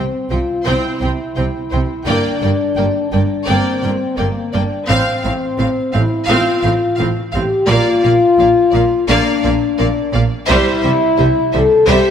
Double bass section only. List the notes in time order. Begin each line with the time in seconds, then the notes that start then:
0.31 C2
0.66 C2
1.02 C2
1.37 C2
1.73 C2
2.07 G1
2.43 G1
2.78 G1
3.13 G1
3.48 G1
3.84 G1
4.19 G1
4.55 G1
4.90 A1
5.25 A1
5.59 A1
5.95 A1
6.29 A1
6.64 A1
6.99 A1
7.34 A1
7.69 A#1
8.04 A#1
8.39 A#1
8.74 A#1
9.09 A#1
9.45 A#1
9.80 A#1
10.15 A#1
10.50 C2
10.85 C2
11.20 C2
11.54 C2
11.89 C2